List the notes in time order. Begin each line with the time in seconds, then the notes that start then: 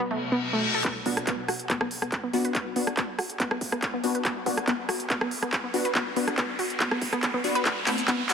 Already playing: B2 F#3
0.00 reverse cymbal
0.11 A3
0.32 B3
0.53 A3
0.74 A4
0.84 B3, kick, clap, closed hi-hat, riser
1.06 B3 D4 F#4, kick, open hi-hat
1.17 cross-stick, closed hi-hat
1.27 B3, kick, clap, closed hi-hat
1.48 F#4, cross-stick, open hi-hat
1.60 closed hi-hat
1.70 B3, kick, clap, closed hi-hat
1.81 B3, cross-stick
1.91 open hi-hat
2.02 B3, cross-stick, closed hi-hat
2.12 kick, clap, closed hi-hat
2.24 B3
2.33 B3 D4 F#4, open hi-hat
2.45 B4, closed hi-hat
2.55 B3, kick, clap, closed hi-hat
2.76 B3 D4 F#4, open hi-hat
2.87 cross-stick, closed hi-hat
2.97 B3, kick, clap, closed hi-hat
3.19 F#4, cross-stick, open hi-hat
3.30 closed hi-hat
3.40 B3, kick, clap, closed hi-hat
3.51 B3, cross-stick
3.61 kick, open hi-hat
3.72 B3, cross-stick, closed hi-hat
3.82 kick, clap, closed hi-hat
3.94 B3
4.04 B3 D4 F#4, open hi-hat
4.15 B4, closed hi-hat
4.25 B3, kick, clap, closed hi-hat
4.46 B3 D4 F#4, kick, open hi-hat
4.57 cross-stick, closed hi-hat
4.68 B3, kick, clap, closed hi-hat
4.89 F#4, cross-stick, open hi-hat
5.00 closed hi-hat
5.10 B3, kick, clap, closed hi-hat
5.21 B3, cross-stick
5.31 open hi-hat
5.42 B3, cross-stick, closed hi-hat
5.53 kick, clap, closed hi-hat
5.64 B3
5.74 B3 D4 F#4, open hi-hat
5.85 B4, closed hi-hat
5.95 B3, kick, clap, closed hi-hat
6.16 B3 D4 F#4, open hi-hat
6.28 cross-stick, closed hi-hat
6.38 B3, kick, clap, closed hi-hat
6.59 F#4, open hi-hat
6.70 closed hi-hat
6.80 B3, kick, clap, closed hi-hat
6.91 B3, cross-stick
7.02 kick, open hi-hat
7.13 B3, cross-stick, closed hi-hat
7.23 kick, clap, closed hi-hat
7.34 B3
7.44 B3 D4 F#4, open hi-hat
7.55 B4, closed hi-hat
7.65 A3, kick, clap, closed hi-hat, shaker
7.87 A3 B3 C4 E4, kick, clap, open hi-hat, shaker
7.98 closed hi-hat, shaker
8.08 B3, kick, clap, closed hi-hat, shaker
8.29 F#4, clap, open hi-hat, shaker